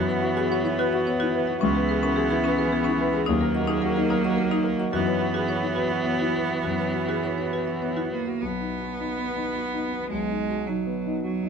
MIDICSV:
0, 0, Header, 1, 6, 480
1, 0, Start_track
1, 0, Key_signature, 5, "major"
1, 0, Tempo, 552995
1, 1413, Time_signature, 3, 2, 24, 8
1, 4770, Tempo, 583658
1, 7170, Tempo, 566038
1, 9780, End_track
2, 0, Start_track
2, 0, Title_t, "Marimba"
2, 0, Program_c, 0, 12
2, 80, Note_on_c, 0, 73, 58
2, 155, Note_off_c, 0, 73, 0
2, 202, Note_on_c, 0, 76, 57
2, 277, Note_off_c, 0, 76, 0
2, 322, Note_on_c, 0, 66, 86
2, 397, Note_off_c, 0, 66, 0
2, 450, Note_on_c, 0, 73, 60
2, 523, Note_off_c, 0, 73, 0
2, 565, Note_on_c, 0, 73, 59
2, 640, Note_off_c, 0, 73, 0
2, 687, Note_on_c, 0, 66, 87
2, 761, Note_off_c, 0, 66, 0
2, 805, Note_on_c, 0, 76, 58
2, 880, Note_off_c, 0, 76, 0
2, 927, Note_on_c, 0, 73, 64
2, 1001, Note_off_c, 0, 73, 0
2, 1040, Note_on_c, 0, 66, 87
2, 1116, Note_off_c, 0, 66, 0
2, 1278, Note_on_c, 0, 76, 58
2, 1354, Note_off_c, 0, 76, 0
2, 1398, Note_on_c, 0, 61, 89
2, 1474, Note_off_c, 0, 61, 0
2, 1518, Note_on_c, 0, 68, 57
2, 1594, Note_off_c, 0, 68, 0
2, 1639, Note_on_c, 0, 71, 61
2, 1715, Note_off_c, 0, 71, 0
2, 1763, Note_on_c, 0, 61, 90
2, 1837, Note_off_c, 0, 61, 0
2, 1876, Note_on_c, 0, 68, 68
2, 1952, Note_off_c, 0, 68, 0
2, 1999, Note_on_c, 0, 68, 67
2, 2074, Note_off_c, 0, 68, 0
2, 2117, Note_on_c, 0, 61, 90
2, 2192, Note_off_c, 0, 61, 0
2, 2242, Note_on_c, 0, 71, 64
2, 2315, Note_off_c, 0, 71, 0
2, 2363, Note_on_c, 0, 68, 68
2, 2435, Note_off_c, 0, 68, 0
2, 2468, Note_on_c, 0, 61, 91
2, 2544, Note_off_c, 0, 61, 0
2, 2718, Note_on_c, 0, 71, 57
2, 2791, Note_off_c, 0, 71, 0
2, 2833, Note_on_c, 0, 63, 91
2, 2906, Note_off_c, 0, 63, 0
2, 2958, Note_on_c, 0, 70, 57
2, 3029, Note_off_c, 0, 70, 0
2, 3077, Note_on_c, 0, 75, 63
2, 3149, Note_off_c, 0, 75, 0
2, 3189, Note_on_c, 0, 63, 99
2, 3263, Note_off_c, 0, 63, 0
2, 3314, Note_on_c, 0, 70, 61
2, 3387, Note_off_c, 0, 70, 0
2, 3439, Note_on_c, 0, 70, 62
2, 3510, Note_off_c, 0, 70, 0
2, 3560, Note_on_c, 0, 63, 87
2, 3631, Note_off_c, 0, 63, 0
2, 3684, Note_on_c, 0, 75, 57
2, 3753, Note_off_c, 0, 75, 0
2, 3804, Note_on_c, 0, 70, 66
2, 3874, Note_off_c, 0, 70, 0
2, 3919, Note_on_c, 0, 63, 90
2, 3991, Note_off_c, 0, 63, 0
2, 4162, Note_on_c, 0, 75, 58
2, 4234, Note_off_c, 0, 75, 0
2, 4280, Note_on_c, 0, 66, 78
2, 4354, Note_off_c, 0, 66, 0
2, 4402, Note_on_c, 0, 73, 53
2, 4475, Note_off_c, 0, 73, 0
2, 4518, Note_on_c, 0, 76, 50
2, 4593, Note_off_c, 0, 76, 0
2, 4636, Note_on_c, 0, 66, 80
2, 4712, Note_off_c, 0, 66, 0
2, 4760, Note_on_c, 0, 73, 59
2, 4832, Note_off_c, 0, 73, 0
2, 4880, Note_on_c, 0, 73, 54
2, 4950, Note_off_c, 0, 73, 0
2, 4988, Note_on_c, 0, 66, 70
2, 5061, Note_off_c, 0, 66, 0
2, 5103, Note_on_c, 0, 76, 55
2, 5178, Note_off_c, 0, 76, 0
2, 5225, Note_on_c, 0, 73, 52
2, 5299, Note_off_c, 0, 73, 0
2, 5341, Note_on_c, 0, 66, 64
2, 5417, Note_off_c, 0, 66, 0
2, 5586, Note_on_c, 0, 76, 47
2, 5661, Note_off_c, 0, 76, 0
2, 5705, Note_on_c, 0, 66, 63
2, 5781, Note_off_c, 0, 66, 0
2, 5828, Note_on_c, 0, 73, 39
2, 5903, Note_off_c, 0, 73, 0
2, 5956, Note_on_c, 0, 76, 42
2, 6029, Note_off_c, 0, 76, 0
2, 6079, Note_on_c, 0, 66, 65
2, 6151, Note_off_c, 0, 66, 0
2, 6201, Note_on_c, 0, 73, 47
2, 6273, Note_off_c, 0, 73, 0
2, 6320, Note_on_c, 0, 73, 46
2, 6394, Note_off_c, 0, 73, 0
2, 6444, Note_on_c, 0, 66, 63
2, 6516, Note_off_c, 0, 66, 0
2, 6561, Note_on_c, 0, 76, 41
2, 6634, Note_off_c, 0, 76, 0
2, 6682, Note_on_c, 0, 73, 43
2, 6755, Note_off_c, 0, 73, 0
2, 6802, Note_on_c, 0, 66, 59
2, 6876, Note_off_c, 0, 66, 0
2, 7043, Note_on_c, 0, 76, 38
2, 7116, Note_off_c, 0, 76, 0
2, 9780, End_track
3, 0, Start_track
3, 0, Title_t, "Ambient pad"
3, 0, Program_c, 1, 92
3, 0, Note_on_c, 1, 59, 68
3, 0, Note_on_c, 1, 66, 67
3, 0, Note_on_c, 1, 76, 65
3, 1415, Note_off_c, 1, 66, 0
3, 1420, Note_on_c, 1, 68, 61
3, 2841, Note_off_c, 1, 59, 0
3, 2842, Note_off_c, 1, 76, 0
3, 2844, Note_off_c, 1, 68, 0
3, 2852, Note_on_c, 1, 66, 68
3, 2853, Note_on_c, 1, 75, 67
3, 2855, Note_on_c, 1, 58, 70
3, 4279, Note_on_c, 1, 59, 64
3, 4279, Note_on_c, 1, 76, 69
3, 4287, Note_off_c, 1, 75, 0
3, 4288, Note_off_c, 1, 58, 0
3, 7158, Note_off_c, 1, 66, 0
3, 7159, Note_off_c, 1, 59, 0
3, 7167, Note_off_c, 1, 76, 0
3, 7168, Note_on_c, 1, 66, 52
3, 7169, Note_on_c, 1, 59, 50
3, 7169, Note_on_c, 1, 75, 49
3, 9780, Note_off_c, 1, 59, 0
3, 9780, Note_off_c, 1, 66, 0
3, 9780, Note_off_c, 1, 75, 0
3, 9780, End_track
4, 0, Start_track
4, 0, Title_t, "Grand piano"
4, 0, Program_c, 2, 0
4, 0, Note_on_c, 2, 42, 70
4, 67, Note_on_c, 2, 71, 52
4, 132, Control_c, 2, 64, 127
4, 188, Note_on_c, 2, 66, 58
4, 272, Note_off_c, 2, 71, 0
4, 316, Note_on_c, 2, 68, 47
4, 392, Note_off_c, 2, 66, 0
4, 435, Note_on_c, 2, 66, 64
4, 444, Note_off_c, 2, 68, 0
4, 558, Note_on_c, 2, 64, 56
4, 636, Note_off_c, 2, 66, 0
4, 683, Note_on_c, 2, 71, 67
4, 758, Note_off_c, 2, 64, 0
4, 811, Note_on_c, 2, 66, 60
4, 881, Note_off_c, 2, 71, 0
4, 933, Note_on_c, 2, 59, 52
4, 1005, Note_off_c, 2, 66, 0
4, 1056, Note_on_c, 2, 64, 59
4, 1126, Note_off_c, 2, 59, 0
4, 1174, Note_on_c, 2, 71, 61
4, 1247, Note_off_c, 2, 64, 0
4, 1289, Note_on_c, 2, 66, 54
4, 1365, Note_off_c, 2, 71, 0
4, 1368, Note_off_c, 2, 42, 0
4, 1411, Note_off_c, 2, 66, 0
4, 1413, Note_on_c, 2, 37, 78
4, 1428, Control_c, 2, 64, 0
4, 1536, Note_on_c, 2, 71, 50
4, 1583, Control_c, 2, 64, 127
4, 1658, Note_on_c, 2, 68, 53
4, 1725, Note_off_c, 2, 71, 0
4, 1767, Note_on_c, 2, 70, 54
4, 1846, Note_off_c, 2, 68, 0
4, 1887, Note_on_c, 2, 68, 58
4, 1889, Note_off_c, 2, 70, 0
4, 2000, Note_on_c, 2, 64, 55
4, 2080, Note_off_c, 2, 68, 0
4, 2133, Note_on_c, 2, 71, 67
4, 2195, Note_off_c, 2, 64, 0
4, 2245, Note_on_c, 2, 68, 55
4, 2321, Note_off_c, 2, 71, 0
4, 2363, Note_on_c, 2, 59, 57
4, 2436, Note_off_c, 2, 68, 0
4, 2494, Note_on_c, 2, 64, 58
4, 2554, Note_off_c, 2, 59, 0
4, 2610, Note_on_c, 2, 71, 63
4, 2679, Note_off_c, 2, 64, 0
4, 2721, Note_on_c, 2, 68, 57
4, 2797, Note_off_c, 2, 71, 0
4, 2806, Note_off_c, 2, 37, 0
4, 2840, Note_off_c, 2, 68, 0
4, 2855, Note_on_c, 2, 39, 75
4, 2856, Control_c, 2, 64, 0
4, 2973, Note_on_c, 2, 70, 62
4, 2994, Control_c, 2, 64, 127
4, 3081, Note_on_c, 2, 66, 55
4, 3156, Note_off_c, 2, 70, 0
4, 3202, Note_on_c, 2, 68, 49
4, 3270, Note_off_c, 2, 66, 0
4, 3320, Note_off_c, 2, 68, 0
4, 3328, Note_on_c, 2, 66, 61
4, 3448, Note_on_c, 2, 63, 57
4, 3514, Note_off_c, 2, 66, 0
4, 3561, Note_on_c, 2, 70, 69
4, 3634, Note_off_c, 2, 63, 0
4, 3683, Note_on_c, 2, 66, 57
4, 3750, Note_off_c, 2, 70, 0
4, 3793, Note_on_c, 2, 58, 54
4, 3872, Note_off_c, 2, 66, 0
4, 3909, Note_on_c, 2, 63, 58
4, 3988, Note_off_c, 2, 58, 0
4, 4028, Note_on_c, 2, 70, 60
4, 4107, Note_off_c, 2, 63, 0
4, 4152, Note_on_c, 2, 66, 54
4, 4227, Note_off_c, 2, 70, 0
4, 4253, Note_off_c, 2, 39, 0
4, 4278, Note_off_c, 2, 66, 0
4, 4280, Note_on_c, 2, 42, 71
4, 4297, Control_c, 2, 64, 0
4, 4392, Note_on_c, 2, 71, 49
4, 4436, Control_c, 2, 64, 127
4, 4516, Note_on_c, 2, 66, 48
4, 4593, Note_off_c, 2, 71, 0
4, 4640, Note_on_c, 2, 68, 45
4, 4715, Note_off_c, 2, 66, 0
4, 4756, Note_on_c, 2, 66, 56
4, 4765, Note_off_c, 2, 68, 0
4, 4881, Note_on_c, 2, 64, 49
4, 4947, Note_off_c, 2, 66, 0
4, 4995, Note_on_c, 2, 71, 58
4, 5068, Note_off_c, 2, 64, 0
4, 5111, Note_on_c, 2, 66, 48
4, 5185, Note_off_c, 2, 71, 0
4, 5231, Note_on_c, 2, 59, 43
4, 5303, Note_off_c, 2, 66, 0
4, 5358, Note_on_c, 2, 64, 47
4, 5424, Note_off_c, 2, 59, 0
4, 5469, Note_on_c, 2, 71, 44
4, 5548, Note_off_c, 2, 64, 0
4, 5588, Note_on_c, 2, 66, 40
4, 5664, Note_off_c, 2, 71, 0
4, 5681, Note_off_c, 2, 42, 0
4, 5716, Note_on_c, 2, 42, 52
4, 5731, Control_c, 2, 64, 0
4, 5784, Note_off_c, 2, 66, 0
4, 5826, Note_on_c, 2, 71, 37
4, 5871, Control_c, 2, 64, 127
4, 5954, Note_on_c, 2, 66, 36
4, 6024, Note_off_c, 2, 71, 0
4, 6074, Note_on_c, 2, 68, 41
4, 6149, Note_off_c, 2, 66, 0
4, 6190, Note_on_c, 2, 66, 40
4, 6197, Note_off_c, 2, 68, 0
4, 6313, Note_on_c, 2, 64, 43
4, 6389, Note_off_c, 2, 66, 0
4, 6441, Note_on_c, 2, 71, 46
4, 6512, Note_off_c, 2, 64, 0
4, 6560, Note_on_c, 2, 66, 43
4, 6636, Note_off_c, 2, 71, 0
4, 6683, Note_on_c, 2, 59, 41
4, 6756, Note_off_c, 2, 66, 0
4, 6799, Note_on_c, 2, 64, 44
4, 6878, Note_off_c, 2, 59, 0
4, 6931, Note_on_c, 2, 71, 41
4, 6997, Note_off_c, 2, 64, 0
4, 7047, Note_on_c, 2, 66, 37
4, 7122, Note_off_c, 2, 71, 0
4, 7136, Note_off_c, 2, 42, 0
4, 7167, Note_off_c, 2, 66, 0
4, 7174, Note_on_c, 2, 35, 44
4, 7186, Control_c, 2, 64, 0
4, 7330, Note_on_c, 2, 63, 30
4, 7345, Control_c, 2, 64, 127
4, 7502, Note_on_c, 2, 66, 32
4, 7589, Note_off_c, 2, 63, 0
4, 7664, Note_on_c, 2, 63, 40
4, 7755, Note_off_c, 2, 66, 0
4, 7822, Note_on_c, 2, 59, 33
4, 7916, Note_off_c, 2, 63, 0
4, 7977, Note_on_c, 2, 63, 38
4, 8074, Note_off_c, 2, 59, 0
4, 8142, Note_on_c, 2, 66, 31
4, 8230, Note_off_c, 2, 63, 0
4, 8296, Note_on_c, 2, 63, 37
4, 8391, Note_off_c, 2, 66, 0
4, 8454, Note_on_c, 2, 59, 34
4, 8547, Note_off_c, 2, 63, 0
4, 8578, Note_off_c, 2, 35, 0
4, 8606, Note_on_c, 2, 35, 45
4, 8625, Control_c, 2, 64, 0
4, 8706, Note_off_c, 2, 59, 0
4, 8771, Note_on_c, 2, 63, 34
4, 8778, Control_c, 2, 64, 127
4, 8929, Note_on_c, 2, 66, 35
4, 9026, Note_off_c, 2, 63, 0
4, 9089, Note_on_c, 2, 63, 38
4, 9184, Note_off_c, 2, 66, 0
4, 9250, Note_on_c, 2, 59, 36
4, 9344, Note_off_c, 2, 63, 0
4, 9416, Note_on_c, 2, 63, 39
4, 9505, Note_off_c, 2, 59, 0
4, 9560, Note_on_c, 2, 66, 36
4, 9669, Note_off_c, 2, 63, 0
4, 9728, Note_on_c, 2, 63, 38
4, 9780, Note_off_c, 2, 35, 0
4, 9780, Note_off_c, 2, 63, 0
4, 9780, Note_off_c, 2, 66, 0
4, 9780, End_track
5, 0, Start_track
5, 0, Title_t, "Viola"
5, 0, Program_c, 3, 41
5, 0, Note_on_c, 3, 59, 60
5, 1374, Note_off_c, 3, 59, 0
5, 1413, Note_on_c, 3, 59, 67
5, 2812, Note_off_c, 3, 59, 0
5, 2842, Note_on_c, 3, 58, 71
5, 4253, Note_off_c, 3, 58, 0
5, 4289, Note_on_c, 3, 59, 69
5, 6970, Note_off_c, 3, 59, 0
5, 9780, End_track
6, 0, Start_track
6, 0, Title_t, "Cello"
6, 0, Program_c, 4, 42
6, 0, Note_on_c, 4, 52, 60
6, 1397, Note_off_c, 4, 52, 0
6, 1402, Note_on_c, 4, 52, 74
6, 2841, Note_on_c, 4, 54, 73
6, 2854, Note_off_c, 4, 52, 0
6, 4275, Note_off_c, 4, 54, 0
6, 4280, Note_on_c, 4, 52, 72
6, 6894, Note_off_c, 4, 52, 0
6, 6927, Note_on_c, 4, 58, 57
6, 7166, Note_on_c, 4, 59, 60
6, 7178, Note_off_c, 4, 58, 0
6, 8596, Note_off_c, 4, 59, 0
6, 8602, Note_on_c, 4, 56, 67
6, 9083, Note_on_c, 4, 54, 53
6, 9096, Note_off_c, 4, 56, 0
6, 9553, Note_off_c, 4, 54, 0
6, 9558, Note_on_c, 4, 54, 53
6, 9780, Note_off_c, 4, 54, 0
6, 9780, End_track
0, 0, End_of_file